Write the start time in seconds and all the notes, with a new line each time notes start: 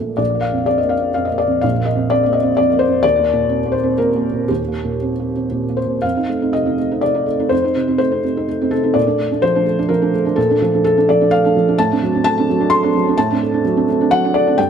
Already playing: A#1 A3 D4 A#4
0.00 A#2
0.17 A#1 D5
0.35 A#3
0.41 F5
0.52 F2
0.66 C4 D5
0.78 D#5
0.83 A#3
0.89 F5
0.99 C4
1.14 F2 F5
1.25 D#5
1.31 A#3
1.38 D5
1.47 F2
1.61 A#1 F5
1.80 A#3
1.85 D#5
1.95 F2
2.10 C4 D5
2.26 A#3
2.33 D#5
2.42 C4
2.57 F2 D5
2.73 A#3
2.79 C5
2.88 F2
3.03 D#2 D5
3.19 A#3
3.33 A#2
3.49 C4
3.66 A#3
3.72 C5
3.83 C4
3.98 A#2 A#4
4.16 A#3
4.33 A#2
4.48 D#2 G4
4.68 A#3
4.84 A#2
5.02 C4
5.20 A#3
5.36 C4
5.51 A#2
5.69 A#3
5.77 C5
5.86 A#2
6.02 F2 F5
6.17 C4 D#4
6.29 A3
6.42 C4 D#4
6.53 C3 D#5
6.66 C4 D#4
6.79 A3
6.91 C4 D#4
7.01 C3 D5
7.14 C4 D#4
7.26 A3
7.39 C4 D#4
7.49 F2 C5
7.64 C4 D#4
7.76 C3
7.88 C4 D#4
7.98 A3 C5
8.11 C4 D#4
8.24 C3
8.37 C4 D#4
8.49 A3
8.61 C4 D#4
8.71 C3 A4
8.83 C4 D#4
8.94 A#2 D5
9.07 A3 D4
9.19 A3
9.31 A3 D4
9.42 F3 C5
9.55 A3 D4
9.66 A3
9.79 A3 D4
9.89 F3 A#4
10.02 A3 D4
10.14 A3
10.25 A3 D4
10.36 A#2 A4
10.50 A3 D4
10.62 F3
10.74 A3 D4
10.84 A3 A4
10.97 A3 D4
11.09 F3 D5
11.21 A3 D4
11.31 A3 F5
11.45 A3 D4
11.57 F3
11.68 A3 D4
11.78 A2 A5
11.92 C4 D4
12.03 F#3
12.15 C4 D4
12.24 A3 A5
12.39 C4 D4
12.49 F#3
12.60 C4 D4
12.70 A3 C6
12.84 C4 D4
12.95 F#3
13.08 C4 D4
13.18 A2 A5
13.32 C4 D4
13.43 A3
13.54 C4 D4
13.65 F#3
13.77 C4 D4
13.89 A3
14.01 C4 D4
14.11 F#3 F#5
14.25 C4 D4
14.34 A3 D5
14.47 C4 D4
14.58 G2 G5